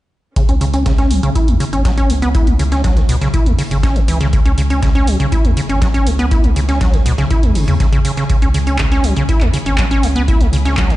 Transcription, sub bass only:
0.49 C#2
1.11 C#2
1.23 B1
1.48 E2
1.73 G#1
2.10 C#2
2.47 C#2
3.09 C#2
3.22 B1
3.46 E2
3.71 G#1
4.08 C#2
4.45 C#2
5.08 C#2
5.20 B1
5.45 E2
5.69 G#1
6.07 C#2
6.44 C#2
7.06 C#2
7.18 B1
7.43 E2
7.55 G#1
7.68 E2
7.80 B1
8.42 C#2
9.04 C#2
9.17 B1
9.41 E2
9.66 G#1
10.03 C#2
10.41 C#2

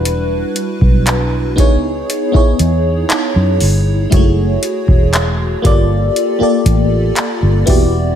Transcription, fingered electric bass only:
Already playing: E1
0.81 B1
1.58 C#2
2.34 muted fingered electric bass stroke
2.60 E2
3.36 F#2
3.61 G1
4.12 F#1
4.88 E1
5.65 G1
6.41 muted fingered electric bass stroke
6.66 A1
7.43 G1
7.68 E1

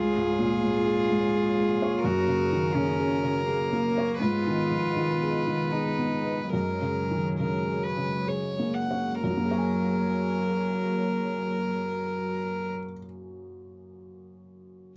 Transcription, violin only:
Already playing: G#4
2.06 A#4
4.21 B4
6.54 A#4
7.39 A#4
7.83 B4
8.28 C#5
8.74 F#5
9.23 A#4

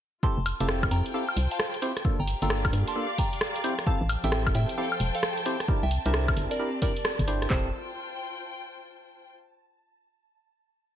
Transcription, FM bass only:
0.38 F1
0.61 F1
0.83 C2
0.91 F2
1.37 C2
2.19 G1
2.42 G1
2.65 F1
2.73 G2
4.01 A1
4.24 A1
4.47 G1
4.55 A2
5.00 E1
5.83 C2
6.06 C2
6.28 A#1
6.37 G1
7.19 G1
7.50 F1

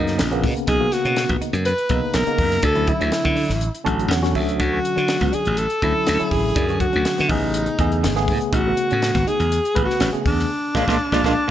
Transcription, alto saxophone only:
Already playing: D#4
0.67 G#4
0.93 F#4
1.66 B4
2.15 A#4
2.65 A4
2.89 E4
4.61 F#4
5.34 G#4
5.58 A4
6.31 G#4
6.81 F#4
7.29 D#4
8.55 F#4
9.28 G#4
9.85 F#4
10.27 D4

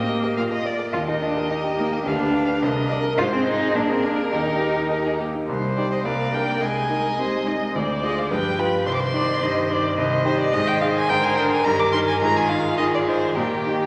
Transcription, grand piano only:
Already playing: A#2 A#4
0.09 D#5
0.23 A#4
0.38 A#2
0.51 A#4
0.66 D5
0.79 A#4
0.94 D#2
1.08 A#4
1.22 D#5
1.37 A#4
1.51 D#5
1.64 G4
1.78 D#4
1.92 G4
2.06 D2
2.20 B4
2.34 F5
2.47 B4
2.62 C2
2.76 A#4
2.89 D#5
3.03 A#4
3.18 G#2
3.32 G#4
3.46 C5
3.60 G#4
3.75 A#2
3.89 G#4
4.04 A#4
4.18 G#4
4.33 D#2
4.47 G4
4.61 A#4
4.76 G4
4.91 A#4
5.05 D#4
5.20 A#3
5.35 D#4
5.49 C2
5.78 D#4 G4
6.05 C2
6.34 D4 A#4
6.62 C2
6.89 D#4
7.18 C3
7.47 D#4
7.75 D2
8.03 F4 G#4
8.31 G2
8.59 F4 G4
8.86 C2
9.14 D#4
9.41 G2
9.70 D#4
9.98 C2
10.25 D#4 G4
10.53 G#2
10.82 D#4 G#4
11.10 G#2
11.38 D4 A#4
11.66 G2
11.94 D#4 A#4
12.22 G#2
12.51 D#4
12.79 D#3
13.08 D#4
13.37 A#2
13.66 D#4 G4

